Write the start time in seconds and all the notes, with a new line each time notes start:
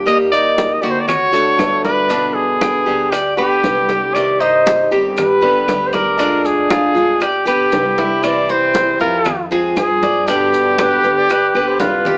Already playing: D#2 G4
0.06 D#3 G3 A#3 D#4 G4 D#5, high bongo, high conga, claves, maracas
0.31 D#4 D5, high bongo, high conga, maracas
0.58 high bongo, high conga, maracas
0.73 D#5
0.81 D2 G3 A#3 D#4 F#4 G4 D5, high bongo, high conga, maracas
0.90 C5
1.00 D5
1.07 C#5, muted steel-string acoustic guitar stroke, high bongo, high conga, low conga, claves, maracas
1.32 A3 D4 F#4 A4, high conga, maracas
1.57 G1 D3 A3 D4 F#4, high bongo, low bongo, high conga, claves, maracas
1.84 B4 D5, high bongo, high conga, maracas
2.09 B2 D3 B3 D4, high bongo, high conga, maracas
2.34 G#4, high bongo, high conga
2.61 G5, high bongo, high conga, claves, maracas
2.86 D2 D3 G3 B3 G4, high bongo, high conga, maracas
3.10 G4 D5, muted steel-string acoustic guitar stroke, high bongo, high conga, maracas
3.36 D3 G3 B3 G4 B4, high conga, claves
3.64 C2 D3 B3 G4, high bongo, low bongo, high conga, maracas
3.89 G4, high bongo, high conga, maracas
4.14 C3 D#3 G3 C4 G4 D5, high bongo, high conga, claves, maracas
4.40 D#4 C5, high bongo, high conga, maracas
4.66 high bongo, high conga, maracas
4.91 G1 D#3 G3 C4 G4, high bongo, high conga, maracas
5.17 B4, muted steel-string acoustic guitar stroke, high bongo, high conga, low conga, claves, maracas
5.41 D3 G3 B3 G4 B4, high conga
5.68 D2 D3 G3 B3 G4, high bongo, low bongo, high conga, claves, maracas
5.87 C5
5.93 A#4 D5, high bongo, high conga, maracas
6.18 D3 G#3 D4 F4, high bongo, high conga, maracas
6.45 G#4, high bongo, high conga, maracas
6.70 F4, high bongo, high conga, claves, maracas
6.94 G1 G#3 D4 F4, high bongo, high conga, maracas
7.20 G4 D5, muted steel-string acoustic guitar stroke, high bongo, high conga, maracas
7.45 B1 D3 G3 B3 G4 B4, high conga, claves, maracas
7.72 C2 G4, high bongo, low bongo, high conga, maracas
7.98 E4, high bongo, high conga, maracas
8.23 C3 E3 G3 C4 E4 D5, high bongo, high conga, claves, maracas
8.49 C4 C5, high bongo, high conga, maracas
8.74 high bongo, high conga, maracas
8.99 F2 E3 G3 C4 E4 F4 A#4, high bongo, high conga, maracas
9.25 muted steel-string acoustic guitar stroke, high bongo, high conga, low conga, claves, maracas
9.51 F3 G#3 C4 F4 G#4, high conga
9.76 G2 F3 C4 F4 G#4, high bongo, low bongo, high conga, claves, maracas
10.03 D5, high conga, maracas
10.27 B2 D3 G3 B3 D4 G4, high bongo, high conga, maracas
10.53 high bongo, high conga, maracas
10.78 G4 B4, high bongo, high conga, claves, maracas
11.03 D2 D3 G3 B3 G4, high bongo, high conga, maracas
11.18 D5
11.29 B4 D5, muted steel-string acoustic guitar stroke, high bongo, high conga, maracas
11.54 D2 D3 G3 B3 G4 B4, high conga, claves
11.64 B4 C5
11.79 C2 D3 G3 B3 F4 G4 B4, high bongo, low bongo, high conga, maracas
12.05 G4, high bongo, low conga, maracas